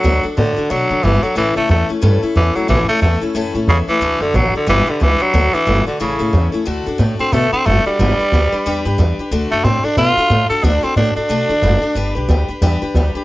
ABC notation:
X:1
M:4/4
L:1/8
Q:"Swing" 1/4=181
K:D
V:1 name="Steel-string acoustic guitar"
[D,A,DFA] [DFA] [A,DFA] [DFA] [D,A,DFA] [DFA] [A,DFA] [DFA] | [A,,E,A,CEA] [A,CEA] [A,CEA] [A,CEA] [A,,E,A,CEA] [A,CEA] [A,CEA] [A,CEA] | [A,,E,A,CEA] [A,CEA] [A,CEA] [A,CEA] [A,,E,A,CEA] [A,CEA] [A,CEA] [A,CEA] | [D,A,DFA] [DFA] [A,DFA] [DFA] [G,DGB] [DGB] [G,DGB] [DGB] |
[D,A,DFA] [DFA] [A,DFA] [DFA] [A,,E,A,CEA] [A,CEA] [A,CEA] [A,CEA] | [D,A,DFA] [DFA] [A,DFA] [DFA] [D,A,DFA] [DFA] [A,DFA] [DFA] | [G,DGB] [DGB] [G,DGB] [DGB] [G,DGB] [DGB] [G,DGB] [DGB] | [D,A,DFA] [DFA] [A,DFA] [DFA] [D,A,DFA] [DFA] [A,DFA] [DFA] |
[D,A,DFA] [DFA] [A,DFA] [DFA] [D,A,DFA] [DFA] [A,DFA] [DFA] | [G,DGB] [DGB] [G,DGB] [DGB] [G,DGB] [DGB] [G,DGB] [DGB] |]
V:2 name="Tenor saxophone" clef=bass
F, z D,2 F,2 E, F, | E, A, A, z3 E, F, | E, A, A, z3 C, E,- | E, D, F, D, E, D, E, F,- |
F, E,2 D, C,3 z | z3 =C A, C A, G,- | G,4- G, z3 | z A, =C D =F3 A |
D =C D D4- D- | D z6 z |]
V:3 name="Upright bass" clef=bass
D,, z A,, z B,, D, G,,, z | A,,, C,, E,, z G,, z E,, z | A,,, z E,, z F,, A,, E,, z | D,, F,, A,,, z G,,, z C,, z |
D,, z G,,, z A,,, A,, E,, z | D,, F,, A,, z B,, z F,,, z | G,,, z D,, z E,, G,, E,, z | D,, F,, A,, z B,, z A,, z |
D,, z A,, z B,, D, F,,, z | G,,, B,,, D,, z E,, z D,, z |]